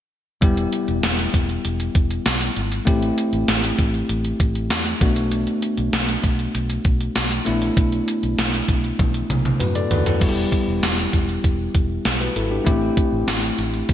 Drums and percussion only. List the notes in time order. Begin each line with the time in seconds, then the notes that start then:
0.42 kick, closed hi-hat
0.57 closed hi-hat
0.73 closed hi-hat
0.88 closed hi-hat
1.03 snare, closed hi-hat
1.19 closed hi-hat
1.34 kick, closed hi-hat
1.49 closed hi-hat
1.65 closed hi-hat
1.80 closed hi-hat
1.95 kick, closed hi-hat
2.11 closed hi-hat
2.26 snare, closed hi-hat
2.41 closed hi-hat
2.57 closed hi-hat
2.72 closed hi-hat
2.87 kick, closed hi-hat
3.03 closed hi-hat
3.18 closed hi-hat
3.33 closed hi-hat
3.48 snare, closed hi-hat
3.64 closed hi-hat
3.79 kick, closed hi-hat
3.94 closed hi-hat
4.09 closed hi-hat
4.25 closed hi-hat
4.40 kick, closed hi-hat
4.55 closed hi-hat
4.70 snare, closed hi-hat
4.86 closed hi-hat
5.01 kick, closed hi-hat
5.16 closed hi-hat
5.32 closed hi-hat
5.47 closed hi-hat
5.62 closed hi-hat
5.78 closed hi-hat
5.93 snare, closed hi-hat
6.09 closed hi-hat
6.24 kick, closed hi-hat
6.39 closed hi-hat
6.55 closed hi-hat
6.70 closed hi-hat
6.85 kick, closed hi-hat
7.01 closed hi-hat
7.15 snare, closed hi-hat
7.31 closed hi-hat
7.46 closed hi-hat
7.62 closed hi-hat
7.77 kick, closed hi-hat
7.92 closed hi-hat
8.08 closed hi-hat
8.23 closed hi-hat
8.38 snare, closed hi-hat
8.54 closed hi-hat
8.69 kick, closed hi-hat
8.84 closed hi-hat
8.99 kick, closed hi-hat, high tom
9.14 closed hi-hat
9.30 closed hi-hat, mid tom
9.45 closed hi-hat, mid tom
9.60 closed hi-hat, mid tom
9.75 closed hi-hat
9.91 closed hi-hat, floor tom
10.06 closed hi-hat, floor tom
10.21 kick, closed hi-hat, crash
10.52 kick, closed hi-hat
10.83 snare, closed hi-hat
11.13 kick, closed hi-hat
11.29 closed hi-hat
11.44 kick, closed hi-hat
11.75 kick, closed hi-hat
12.05 snare, closed hi-hat
12.36 closed hi-hat
12.67 kick, closed hi-hat
12.97 kick, closed hi-hat
13.28 snare, closed hi-hat
13.59 closed hi-hat
13.74 closed hi-hat
13.89 kick, closed hi-hat